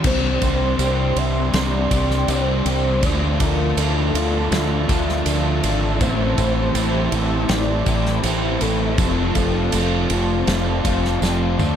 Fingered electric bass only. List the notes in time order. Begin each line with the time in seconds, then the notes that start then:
0.04 C2
0.42 C2
0.79 C2
1.16 C2
1.54 C2
1.91 C2
2.28 C2
2.66 C2
3.03 D2
3.40 D2
3.77 D2
4.14 D2
4.51 D2
4.89 D2
5.26 D2
5.64 G#1
6.01 A1
6.38 A1
6.75 A1
7.12 A1
7.49 A1
7.86 A1
8.24 A1
8.62 A1
8.98 F1
9.36 F1
9.73 F1
10.10 F1
10.47 F1
10.85 F1
11.22 F1
11.59 D2